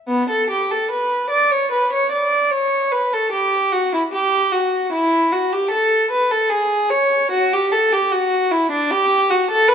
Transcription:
0.08 0.27 B3 medium
0.29 0.48 A4 medium
0.50 0.69 G4 medium
0.71 0.90 A4 medium
0.91 1.29 B4 medium
1.30 1.49 D5 medium
1.51 1.71 C#5 medium
1.71 1.90 B4 medium
1.93 2.11 C#5 medium
2.11 2.50 D5 medium
2.51 2.91 C#5 medium
2.91 3.11 B4 medium
3.13 3.32 A4 medium
3.32 3.71 G4 medium
3.72 3.92 F#4 medium
3.94 4.01 E4 medium
4.12 4.51 G4 medium
4.52 4.91 F#4 medium
4.92 5.31 E4 medium
5.32 5.51 F#4 medium
5.52 5.71 G4 medium
5.71 6.09 A4 medium
6.11 6.30 B4 medium
6.31 6.50 A4 medium
6.50 6.90 G#4 medium
6.90 7.31 C#5 medium
7.31 7.51 F#4 medium
7.53 7.73 G4 medium
7.72 7.92 A4 medium
7.92 8.12 G4 medium
8.12 8.52 F#4 medium
8.51 8.71 E4 medium
8.71 8.91 D4 medium
8.91 9.30 G4 medium
9.30 9.49 F#4 medium
9.51 9.69 A4 medium
9.68 9.75 B4 medium

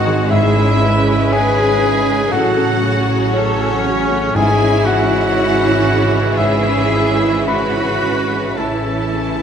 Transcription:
0.00 2.32 G#1 medium
0.00 0.26 G#2 medium
0.00 0.30 G#2 medium
0.00 0.07 D#3 medium
0.00 0.26 D#3 medium
0.00 2.32 G#3 medium
0.00 0.31 C4 medium
0.00 0.33 C4 medium
0.00 0.35 C4 medium
0.00 0.27 D#4 medium
0.00 0.33 D#4 medium
0.00 0.35 D#4 medium
0.00 0.31 F#4 loud
0.00 0.31 F#4 medium
0.00 0.31 F#4 loud
0.00 0.35 C5 medium
0.00 0.33 D#5 medium
0.00 0.35 D#5 medium
0.00 0.27 F#5 loud
0.00 0.31 F#5 medium
0.00 0.33 G#5 loud
0.00 1.55 G#5 medium
0.06 0.31 D#3 medium
0.06 0.81 G#4 medium
0.30 2.36 G#2 medium
0.30 2.29 G#2 medium
0.30 4.32 C#3 medium
0.30 2.30 C#4 medium
0.30 4.19 C#4 medium
0.30 2.27 E4 medium
0.30 1.34 E4 medium
0.30 0.82 G#4 medium
0.30 1.28 E5 loud
0.30 1.33 E5 medium
0.57 0.98 G#3 medium
0.57 2.56 C#4 medium
0.82 1.23 C#4 medium
0.82 1.31 G#4 medium
0.82 2.32 B4 medium
1.06 1.48 G#4 medium
1.06 1.80 C#5 medium
1.32 2.05 G#4 medium
1.32 2.34 G#4 loud
1.32 2.32 G#4 medium
1.32 1.72 C#5 medium
1.32 2.28 G#5 loud
1.32 2.31 G#5 loud
1.56 1.98 G#4 medium
1.56 2.35 G#5 medium
1.81 2.22 C#4 medium
1.81 3.07 C#5 medium
2.07 2.32 G#3 medium
2.07 2.36 G#4 medium
2.31 4.32 A1 medium
2.31 4.39 A2 medium
2.31 4.33 A2 medium
2.31 4.32 F#3 medium
2.31 4.19 F#3 medium
2.31 4.35 C#4 medium
2.31 3.05 F#4 loud
2.31 3.06 F#4 medium
2.31 2.82 A4 medium
2.31 3.29 F#5 loud
2.31 3.33 F#5 medium
2.57 2.97 A3 soft
2.57 4.61 C#4 medium
2.82 3.23 C#4 medium
2.82 3.32 F#4 medium
2.82 3.34 F#4 medium
3.07 3.49 F#4 medium
3.07 3.85 C#5 medium
3.33 4.38 C#4 medium
3.33 4.37 C#4 medium
3.33 4.09 F#4 medium
3.33 3.85 A4 medium
3.33 3.75 C#5 medium
3.33 4.36 C#5 medium
3.58 4.00 F#4 medium
3.58 4.40 F#5 medium
3.85 4.26 C#4 medium
3.85 4.35 C#4 medium
3.85 5.10 C#5 medium
4.11 4.36 A3 medium
4.11 4.40 F#4 medium
4.34 8.58 G#1 medium
4.34 6.32 G#2 medium
4.34 5.82 G#2 medium
4.34 8.26 G#2 medium
4.34 8.54 C#3 medium
4.34 8.57 E3 medium
4.34 8.54 C#4 medium
4.34 6.33 E4 medium
4.34 8.54 E4 medium
4.34 4.87 G#4 medium
4.34 4.82 G#5 loud
4.34 4.85 G#5 loud
4.61 5.01 G#3 medium
4.61 6.63 C#4 medium
4.85 5.26 C#4 medium
4.85 6.37 F#4 loud
4.85 6.39 F#4 loud
4.85 6.37 F#5 medium
4.85 6.33 F#5 loud
5.11 5.51 E4 medium
5.11 5.85 C#5 medium
5.35 5.76 C#5 medium
5.61 6.01 E4 medium
5.86 6.27 C#4 medium
5.86 7.19 C#5 medium
6.13 6.53 G#3 medium
6.37 8.55 G#2 medium
6.37 8.63 G#3 medium
6.37 7.47 E4 medium
6.37 7.46 E4 medium
6.37 7.47 G#4 medium
6.37 7.47 E5 medium
6.37 7.43 E5 medium
6.64 8.86 C#4 medium
6.64 7.08 C#4 medium
6.91 7.36 G#3 medium
7.20 7.65 E4 medium
7.20 8.03 C#5 medium
7.47 8.55 F#4 medium
7.47 8.59 B4 medium
7.47 8.59 B4 loud
7.47 7.93 C#5 medium
7.47 8.58 B5 medium
7.47 8.54 B5 loud
7.76 8.20 E4 soft
8.03 8.47 C#4 soft
8.03 9.40 C#5 medium
8.31 8.58 G#3 soft
8.56 9.42 A1 medium
8.56 9.42 A2 medium
8.56 9.42 C#3 medium
8.56 9.42 E3 medium
8.56 9.42 C#4 soft
8.56 9.42 C#4 medium
8.56 9.42 E4 soft
8.56 9.42 E4 medium
8.56 9.42 A4 medium
8.56 9.42 A5 medium
8.84 9.28 E3 soft
8.84 9.42 C#4 soft
9.13 9.42 C#4 soft

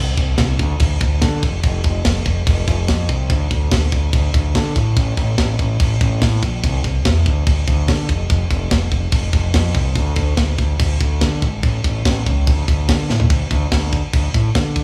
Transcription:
0.00 0.16 C2 medium
0.17 0.37 C2 loud
0.17 kick medium
0.17 crash medium
0.38 0.58 C2 loud
0.38 kick loud
0.38 snare loud
0.38 crash medium
0.59 0.79 D2 medium
0.59 kick medium
0.59 crash medium
0.80 1.00 D2 medium
0.80 kick loud
0.80 crash medium
1.00 1.21 D2 medium
1.00 kick loud
1.00 crash medium
1.22 1.42 D3 loud
1.22 kick loud
1.22 snare loud
1.22 crash medium
1.43 1.62 F1 loud
1.43 kick loud
1.43 crash medium
1.63 1.83 F1 loud
1.63 kick loud
1.63 crash medium
1.84 2.04 F1 loud
1.84 kick medium
1.84 crash medium
2.05 2.25 F1 medium
2.05 kick loud
2.05 snare loud
2.05 crash medium
2.25 2.46 F1 medium
2.25 kick medium
2.25 crash medium
2.47 2.66 F1 medium
2.47 kick loud
2.47 crash medium
2.67 2.87 F1 loud
2.67 kick medium
2.67 crash medium
2.88 3.08 F2 loud
2.88 kick loud
2.88 snare loud
2.88 crash medium
3.09 3.29 C2 loud
3.09 kick medium
3.09 crash medium
3.30 3.50 D2 loud
3.30 kick loud
3.30 crash medium
3.51 3.71 D2 medium
3.51 kick medium
3.51 crash medium
3.72 3.91 D2 medium
3.72 kick loud
3.72 snare loud
3.72 crash medium
3.92 4.12 D2 medium
3.92 kick medium
3.92 crash medium
4.13 4.33 D2 medium
4.13 kick loud
4.13 crash medium
4.34 4.54 D2 medium
4.34 kick loud
4.34 crash medium
4.55 4.75 D3 loud
4.55 kick loud
4.55 snare loud
4.55 crash medium
4.76 4.96 A2 loud
4.76 kick medium
4.76 crash medium
4.96 5.16 A1 loud
4.96 kick loud
4.96 crash medium
5.17 5.37 A1 medium
5.17 kick medium
5.17 crash medium
5.38 5.58 A1 medium
5.38 kick loud
5.38 snare loud
5.38 crash medium
5.59 5.79 A1 medium
5.59 kick medium
5.59 crash medium
5.80 6.00 A1 medium
5.80 kick loud
5.80 crash medium
6.01 6.20 A1 medium
6.01 kick loud
6.01 crash medium
6.22 6.42 A2 medium
6.22 kick loud
6.22 snare loud
6.22 crash medium
6.43 6.62 A#1 loud
6.43 kick medium
6.43 crash medium
6.64 6.83 C2 loud
6.64 kick loud
6.64 crash medium
6.84 7.04 C2 medium
6.84 kick medium
6.84 crash medium
7.05 7.25 E2 medium
7.05 kick loud
7.05 snare loud
7.05 crash medium
7.26 7.46 D2 medium
7.26 kick medium
7.26 crash medium
7.47 7.66 D2 medium
7.47 kick loud
7.47 crash medium
7.68 7.87 D2 medium
7.68 kick loud
7.68 crash medium
7.88 8.08 D3 medium
7.88 kick loud
7.88 snare loud
7.88 crash medium
8.09 8.29 F1 loud
8.09 kick medium
8.09 crash medium
8.30 8.50 F1 loud
8.30 kick loud
8.30 crash medium
8.51 8.70 F1 medium
8.51 kick medium
8.51 crash medium
8.71 8.91 F1 medium
8.71 kick loud
8.71 snare loud
8.71 crash medium
8.91 9.11 F1 loud
8.91 kick medium
8.91 crash medium
9.12 9.32 F1 medium
9.12 kick loud
9.12 crash medium
9.33 9.53 F1 loud
9.33 kick loud
9.33 crash medium
9.54 9.74 F2 medium
9.54 kick loud
9.54 snare loud
9.54 crash loud
9.74 9.95 C2 loud
9.74 kick medium
9.74 crash medium
9.95 10.16 D2 loud
9.95 kick loud
9.95 crash medium
10.16 10.37 D2 loud
10.16 kick medium
10.16 crash medium
10.37 10.57 D2 medium
10.37 kick loud
10.37 snare loud
10.37 crash medium
10.58 10.79 D2 medium
10.58 kick medium
10.58 crash medium
10.80 11.00 D2 medium
10.80 kick loud
10.80 crash loud
11.00 11.20 D2 medium
11.00 kick medium
11.00 crash medium
11.21 11.41 D3 medium
11.21 kick loud
11.21 snare loud
11.21 crash medium
11.42 11.62 G#1 loud
11.42 kick medium
11.42 crash medium
11.63 11.83 A1 loud
11.63 kick loud
11.63 crash medium
11.84 12.04 A1 medium
11.84 kick medium
11.84 crash medium
12.05 12.25 A1 medium
12.05 kick loud
12.05 snare loud
12.05 crash medium
12.26 12.46 C#2 loud
12.26 kick medium
12.26 crash medium
12.47 12.67 D2 medium
12.47 kick loud
12.47 crash medium
12.68 12.87 D2 loud
12.68 kick loud
12.68 crash medium
12.89 13.08 D3 medium
12.89 kick loud
12.89 snare loud
12.89 crash loud
13.10 13.29 A2 medium
13.10 snare medium
13.20 floor tom medium
13.30 13.44 D2 medium
13.30 kick loud
13.30 crash medium
13.51 13.65 D2 loud
13.51 kick medium
13.51 crash medium
13.72 14.00 D2 medium
13.72 kick loud
13.72 snare loud
13.72 crash medium
13.93 kick medium
13.93 crash medium
14.13 14.28 D2 medium
14.13 kick loud
14.13 crash medium
14.34 14.49 A2 medium
14.34 kick loud
14.34 crash medium
14.55 14.84 D3 medium
14.55 kick loud
14.55 snare loud
14.55 crash medium
14.76 kick medium
14.76 crash medium

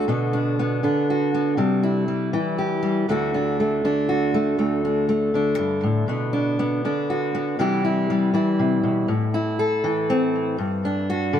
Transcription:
0.00 0.82 D3 medium
0.08 0.83 B2 medium
0.08 0.58 B3 medium
0.33 0.82 D4 medium
0.59 1.33 B3 medium
0.83 1.59 D3 medium
0.83 1.56 D4 soft
1.10 1.57 F#4 soft
1.34 1.56 B3 soft
1.57 2.33 C3 medium
1.57 2.07 G3 soft
1.83 2.32 E4 soft
2.08 2.81 G3 soft
2.33 3.06 E3 medium
2.33 3.06 E4 soft
2.58 3.06 G4 soft
2.83 3.08 G3 medium
3.08 4.57 D2 medium
3.08 3.84 D3 medium
3.08 3.60 A3 medium
3.08 3.34 D4 medium
3.08 4.08 F#4 medium
3.34 3.84 D4 medium
3.60 4.33 A3 soft
3.84 5.33 D3 medium
3.84 4.84 D4 medium
4.09 5.62 F#4 medium
4.34 4.56 A3 medium
4.58 5.58 D2 medium
4.58 5.08 A3 medium
4.85 5.35 D4 soft
5.09 6.06 A3 medium
5.34 6.83 D3 medium
5.34 6.07 D4 soft
5.59 5.84 G2 medium
5.83 6.07 A2 medium
6.08 6.84 B2 medium
6.08 6.58 B3 medium
6.33 6.84 D4 medium
6.59 7.33 B3 medium
6.85 7.59 D3 medium
6.85 7.57 D4 medium
7.10 7.57 F#4 medium
7.35 7.56 B3 medium
7.59 8.34 C3 medium
7.59 8.32 E3 medium
7.59 8.09 G3 medium
7.59 7.83 E4 medium
7.59 9.07 G4 medium
7.85 8.33 E4 soft
8.10 9.09 G3 medium
8.34 9.06 E3 medium
8.34 9.06 E4 medium
8.59 8.83 C3 medium
8.83 9.08 B2 medium
9.08 10.58 A2 medium
9.34 10.56 E4 medium
9.59 10.56 A4 medium
9.84 10.56 E3 medium
10.10 10.56 C4 medium
10.58 11.40 G2 medium
10.85 11.40 D4 medium
11.10 11.40 F#4 medium
11.33 11.40 D3 medium

